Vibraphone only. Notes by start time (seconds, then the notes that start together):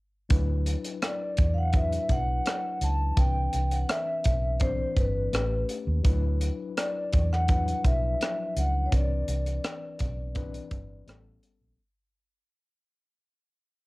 1.06 D5
1.54 F5
1.58 F#5
1.77 E5
2.12 F#5
2.84 A5
3.19 G5
3.72 F#5
3.90 E5
4.62 C5
4.98 B4
6.78 D5
7.33 F#5
7.86 E5
8.59 F#5
8.86 C#5
8.96 D5